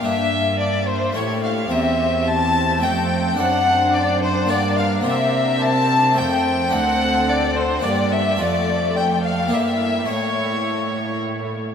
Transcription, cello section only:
X:1
M:3/4
L:1/8
Q:1/4=107
K:Dm
V:1 name="Cello section" clef=bass
G,,4 A,,2 | E,,4 F,,2 | ^F,,4 G,,2 | C,4 F,,2 |
D,,4 G,,2 | F,,4 G,,2 | A,,4- A,, z |]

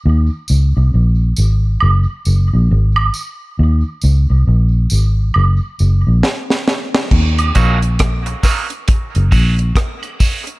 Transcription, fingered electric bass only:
X:1
M:4/4
L:1/16
Q:"Swing 16ths" 1/4=68
K:Ebdor
V:1 name="Fingered electric bass" clef=bass
E,, z D,, C,, B,,,2 A,,,2 G,,, z G,,, B,,, A,,,2 z2 | E,, z D,, C,, B,,,2 A,,,2 G,,, z G,,, B,,, z4 | E,,2 B,,,4 z3 G,,, B,,,2 z4 |]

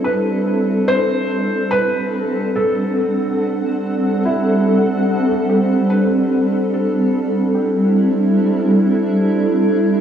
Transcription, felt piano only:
X:1
M:3/4
L:1/16
Q:1/4=72
K:Dmix
V:1 name="Felt piano"
B4 c4 B4 | A8 E3 z | z2 G2 B4 A4 | G8- G2 z2 |]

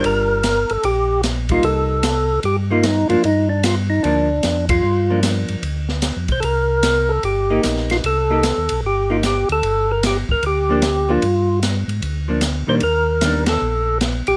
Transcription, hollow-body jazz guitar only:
X:1
M:4/4
L:1/8
Q:"Swing" 1/4=150
K:Gm
V:1 name="Hollow-body jazz guitar"
[G,DFB]2 z4 z [G,B,E]- | [G,B,E]2 z3 [G,B,E] z [F,B,D] | z4 [F,B,D] z3 | z [F,B,D]3 z4 |
z4 z [B,EG]3 | z [B,EG] z3 [B,EG] z2 | z4 z [F,B,D] z [F,B,D] | z4 z [F,B,D] z [E,G,B,D] |
z2 [E,G,B,D] z4 z |]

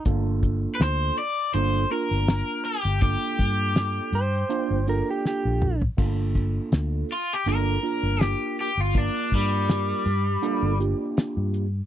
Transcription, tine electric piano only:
X:1
M:4/4
L:1/8
Q:"Swing 16ths" 1/4=81
K:Gm
V:1 name="Tine electric piano"
[B,DFA]3 z [B,DFA] [B,DFB]2 z | [B,DFA]3 z [B,DFc] [B,DFA]2 z | [B,DFA]3 z [B,DFA] [B,DFB]2 z | [B,DFB]3 z [B,DFA] [B,DFG]2 z |]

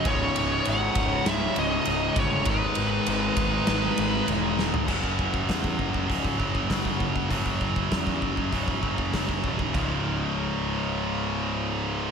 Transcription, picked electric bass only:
X:1
M:4/4
L:1/8
Q:1/4=99
K:C#m
V:1 name="Picked electric bass" clef=bass
C,,, C,,, G,,, C,,, C,,, C,,, C,,, =G,,, | G,,, G,,, G,,, G,,, G,,, G,,, E,,,2 | F,,,2 E,, F,,, C,,, F,,, F,,, F,,, | F,,,2 E,, F,,, C,,, F,,, F,,, D,,, |
C,,,8 |]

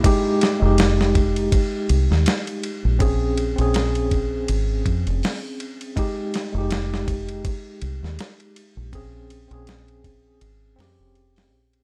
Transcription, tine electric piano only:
X:1
M:4/4
L:1/16
Q:"Swing 16ths" 1/4=81
K:Fm
V:1 name="Tine electric piano"
[A,EG]3 [A,EG]12- [A,EG] | [CDA]3 [CDA]12- [CDA] | [A,EG]3 [A,EG]12- [A,EG] | [CDA]3 [CDA]6- [CDA] [CDG]6 |]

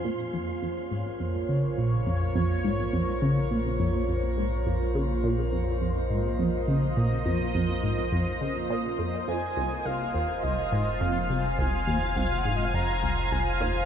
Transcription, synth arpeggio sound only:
X:1
M:4/4
L:1/8
Q:1/4=104
K:Bbm
V:1 name="Synth arpeggio sound" clef=bass
B,, F,, F,, A,, F,, D, B,, F,, | F,, A,, F,, D, B,, F,, F,, A,, | F,, D, B,, F,, F,, A,, F,, D, | B,, F,, F,, A,, F,, D, B,, F,, |
F,, C,, C,, E,, C,, A,, F,, C,, | C,, E,, C,, A,, F,, C,, C,, E,, |]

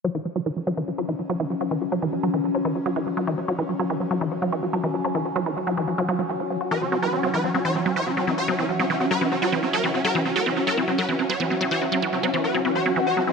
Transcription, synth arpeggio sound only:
X:1
M:4/4
L:1/16
Q:1/4=144
K:none
V:1 name="Synth arpeggio sound" clef=bass
^F, E, F, F, E, F, F, E, F, F, E, F, F, E, F, F, | E, ^F, F, E, F, F, E, F, F, E, F, F, E, F, F, E, | ^F, F, E, F, F, E, F, F, E, F, F, E, F, F, E, F, | ^F, E, F, F, E, F, F, E, F, F, F, F, E, F, F, ^F |
E, ^F, F, E, F, F, E, F, F, E, F, F, E, F, F, E, | ^F, F, E, F, F, E, F, F, E, F, F, E, F, F, E, F, | ^F, E, F, F, E, F, F, E, F, F, E, F, F, E, F, F, | E, ^F, F, E, F, F, E, F, F, E, F, F, E, F, F, E, |]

